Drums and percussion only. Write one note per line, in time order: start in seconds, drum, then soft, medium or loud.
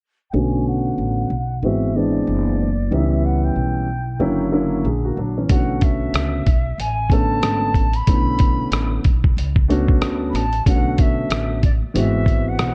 5.49 kick loud
5.49 closed hi-hat loud
5.81 kick medium
5.81 closed hi-hat medium
6.14 cross-stick loud
6.14 closed hi-hat medium
6.46 kick medium
6.46 closed hi-hat medium
6.80 closed hi-hat medium
7.10 kick medium
7.10 closed hi-hat medium
7.43 cross-stick medium
7.43 closed hi-hat medium
7.74 kick medium
7.74 closed hi-hat medium
7.93 closed hi-hat soft
8.07 kick loud
8.07 closed hi-hat medium
8.39 kick medium
8.39 closed hi-hat medium
8.72 cross-stick loud
8.72 closed hi-hat loud
9.04 kick medium
9.04 closed hi-hat medium
9.24 kick medium
9.38 closed hi-hat medium
9.56 kick medium
9.70 closed hi-hat medium
9.88 kick medium
10.02 cross-stick loud
10.02 closed hi-hat medium
10.35 cross-stick soft
10.35 closed hi-hat medium
10.53 closed hi-hat soft
10.66 kick loud
10.66 closed hi-hat loud
10.98 kick medium
10.98 closed hi-hat medium
11.30 cross-stick loud
11.30 closed hi-hat loud
11.63 kick medium
11.63 closed hi-hat medium
11.96 closed hi-hat medium
12.26 kick medium
12.26 closed hi-hat medium
12.59 cross-stick loud
12.59 closed hi-hat medium